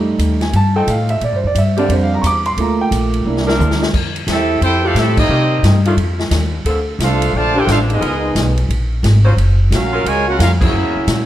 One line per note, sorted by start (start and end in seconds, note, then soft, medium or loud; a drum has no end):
0.00 0.18 F2 medium
0.00 0.38 G3 soft
0.00 0.39 A3 soft
0.00 0.39 D#4 medium
0.18 0.52 D#2 medium
0.18 hi-hat pedal medium
0.18 ride medium
0.41 0.54 G#5 medium
0.41 snare medium
0.41 ride soft
0.53 0.86 G2 loud
0.53 0.76 A5 medium
0.53 ride medium
0.76 1.19 F3 medium
0.76 1.20 A3 medium
0.76 1.20 D#4 medium
0.76 1.19 A4 loud
0.76 0.88 G5 medium
0.87 1.20 A2 loud
0.87 1.10 F5 medium
0.87 hi-hat pedal medium
0.87 ride medium
1.09 1.22 E5 medium
1.09 ride medium
1.21 1.32 A#2 medium
1.21 1.34 D5 medium
1.21 ride medium
1.32 1.43 G2 medium
1.32 1.45 C5 medium
1.44 1.54 F2 medium
1.44 1.57 D5 medium
1.55 1.88 G2 loud
1.55 1.78 E5 medium
1.55 hi-hat pedal medium
1.55 ride medium
1.77 2.21 D3 loud
1.77 2.22 G3 medium
1.77 2.21 A#3 loud
1.77 2.21 C4 medium
1.77 2.22 C4 soft
1.77 2.22 D4 medium
1.77 2.21 G4 loud
1.77 1.90 D5 medium
1.77 ride medium
1.89 2.22 F2 loud
1.89 2.02 C5 medium
1.89 ride medium
2.03 2.13 F5 medium
2.14 2.24 A#5 medium
2.22 2.56 E2 loud
2.22 2.24 C#6 medium
2.22 hi-hat pedal medium
2.22 ride medium
2.26 2.46 D6 loud
2.46 2.58 C6 loud
2.46 ride medium
2.57 2.90 D2 medium
2.57 3.23 A3 medium
2.57 3.23 A#3 soft
2.57 3.23 F4 medium
2.57 ride medium
2.61 2.80 A#5 medium
2.81 2.88 G5 medium
2.91 3.24 A#1 loud
2.91 hi-hat pedal medium
2.91 ride medium
3.14 ride medium
3.25 3.58 C2 medium
3.25 3.79 A#3 medium
3.25 3.79 D4 medium
3.25 3.79 E4 medium
3.37 snare medium
3.47 3.91 E3 loud
3.47 3.91 C4 medium
3.47 3.91 D4 loud
3.47 3.91 A#4 loud
3.47 snare medium
3.59 3.92 D2 loud
3.59 hi-hat pedal medium
3.59 mid tom medium
3.71 snare medium
3.82 snare loud
3.93 4.26 F2 medium
3.93 kick medium
3.93 crash medium
4.16 ride medium
4.27 4.60 E2 loud
4.27 4.59 A3 medium
4.27 4.60 C4 medium
4.27 4.61 C4 medium
4.27 4.59 E4 medium
4.27 snare medium
4.27 hi-hat pedal medium
4.27 ride medium
4.31 4.61 G4 medium
4.31 4.61 A4 medium
4.31 4.61 E5 loud
4.61 4.94 F2 loud
4.61 4.82 C4 loud
4.61 4.82 E4 medium
4.61 4.83 E4 medium
4.61 4.82 G4 medium
4.61 4.83 A4 medium
4.61 4.83 C5 loud
4.61 4.83 G5 loud
4.61 ride medium
4.84 5.27 F3 loud
4.84 4.94 A3 medium
4.84 5.28 A3 loud
4.84 4.94 C4 medium
4.84 4.97 C4 medium
4.84 5.28 E4 loud
4.84 4.96 F4 medium
4.84 5.28 G4 loud
4.84 4.97 G4 medium
4.84 4.97 A4 medium
4.84 4.97 F5 loud
4.94 5.28 A2 loud
4.94 5.17 A3 medium
4.94 5.17 C4 medium
4.94 5.17 E4 medium
4.94 5.19 G4 medium
4.94 5.19 A4 medium
4.94 5.18 E5 loud
4.94 snare medium
4.94 hi-hat pedal medium
4.94 ride medium
4.99 5.19 C4 medium
5.17 5.81 G3 medium
5.17 5.81 A#3 medium
5.17 5.83 C4 medium
5.17 5.81 D#4 medium
5.17 5.83 G4 medium
5.17 5.82 A#4 medium
5.17 5.83 D#5 loud
5.17 kick loud
5.17 crash loud
5.29 5.62 C3 medium
5.29 5.44 D#3 medium
5.29 5.44 A#3 medium
5.29 5.44 C4 medium
5.29 5.45 G4 loud
5.63 5.96 G2 loud
5.63 snare medium
5.63 hi-hat pedal medium
5.63 ride medium
5.85 5.94 D#3 loud
5.85 5.95 A3 loud
5.85 5.95 D4 medium
5.85 5.94 F4 loud
5.85 ride medium
5.96 6.30 F2 medium
5.96 ride medium
6.19 snare medium
6.30 6.64 D#2 loud
6.30 snare medium
6.30 hi-hat pedal medium
6.30 ride medium
6.64 6.98 D2 loud
6.64 6.81 D3 medium
6.64 6.81 A#3 medium
6.64 6.81 C4 medium
6.64 6.81 A4 loud
6.64 ride medium
6.99 7.32 C2 loud
6.99 7.33 A3 medium
6.99 7.32 D4 medium
6.99 7.33 F4 medium
6.99 snare medium
6.99 hi-hat pedal medium
6.99 ride medium
7.03 7.33 D4 medium
7.03 7.33 A4 medium
7.03 7.34 C5 medium
7.03 7.33 F5 loud
7.22 ride medium
7.33 7.66 A#1 medium
7.33 7.56 D3 medium
7.33 7.56 F3 medium
7.33 7.56 A3 medium
7.33 7.57 F4 loud
7.33 7.57 A5 loud
7.37 7.57 C5 loud
7.37 7.57 D5 loud
7.55 7.99 D3 loud
7.55 8.00 A#3 loud
7.55 8.00 C4 loud
7.55 8.00 D4 loud
7.55 7.69 E4 medium
7.55 7.68 G4 medium
7.55 7.69 A4 loud
7.55 7.69 C5 medium
7.59 7.70 G5 loud
7.67 8.00 A1 loud
7.67 7.77 A3 medium
7.67 7.77 D4 medium
7.67 7.80 D4 medium
7.67 7.77 F4 medium
7.67 7.80 A4 medium
7.67 7.80 C5 medium
7.67 7.80 F5 medium
7.67 snare medium
7.67 hi-hat pedal medium
7.67 ride medium
7.89 8.53 G#3 medium
7.89 8.54 B3 medium
7.89 8.55 B3 medium
7.89 8.54 D#4 medium
7.89 8.55 F4 medium
7.89 8.55 G#4 medium
7.89 8.55 D#5 medium
7.89 ride medium
8.01 8.34 C#2 medium
8.01 8.16 F3 medium
8.01 8.16 B3 medium
8.01 8.16 D#4 medium
8.01 8.16 A#4 loud
8.01 ride medium
8.35 8.68 B1 loud
8.35 snare medium
8.35 hi-hat pedal medium
8.35 ride medium
8.57 ride medium
8.69 9.02 A#1 medium
8.69 ride medium
9.03 9.36 G#1 loud
9.03 snare medium
9.03 hi-hat pedal medium
9.03 ride medium
9.25 9.33 F#3 loud
9.25 9.34 C#4 medium
9.25 9.34 F4 medium
9.25 9.34 C5 loud
9.37 9.70 F#1 medium
9.37 ride medium
9.71 10.04 A#1 medium
9.71 10.04 A#3 medium
9.71 10.04 C#4 medium
9.71 10.05 C#4 medium
9.71 10.03 F#4 medium
9.71 10.05 F#4 medium
9.71 10.05 A#4 medium
9.71 10.05 F5 loud
9.71 snare medium
9.71 hi-hat pedal medium
9.71 ride medium
9.93 10.37 F#3 loud
9.93 10.37 C#4 loud
9.93 10.37 F4 loud
9.93 10.37 A#4 loud
10.04 10.38 C#2 medium
10.04 10.28 G#3 medium
10.04 10.28 F4 medium
10.04 10.28 A#4 medium
10.04 10.28 C#5 medium
10.04 10.28 G#5 loud
10.04 ride medium
10.27 10.38 A#3 medium
10.27 10.38 C#4 medium
10.27 10.40 C#4 medium
10.27 10.40 F4 medium
10.27 10.39 F#4 medium
10.27 10.40 A#4 medium
10.27 10.40 F#5 loud
10.39 10.72 F2 loud
10.39 10.49 A#3 medium
10.39 10.49 C#4 medium
10.39 10.52 C#4 medium
10.39 10.49 F4 medium
10.39 10.51 F#4 medium
10.39 10.51 A#4 medium
10.39 10.52 F5 loud
10.39 snare medium
10.39 hi-hat pedal medium
10.39 ride medium
10.60 11.05 F#3 medium
10.60 11.25 A#3 medium
10.60 11.25 C#4 medium
10.60 11.26 C#4 medium
10.60 11.25 E4 medium
10.60 11.05 E4 medium
10.60 11.26 F#4 medium
10.60 11.05 G#4 loud
10.60 11.26 A#4 medium
10.60 11.05 C5 medium
10.60 11.26 E5 medium
10.60 kick loud
10.60 crash medium
10.73 10.84 F#2 loud
10.84 10.95 E2 medium
10.96 11.06 C#2 medium
11.07 11.26 A#2 medium
11.07 snare medium
11.07 hi-hat pedal medium
11.07 ride medium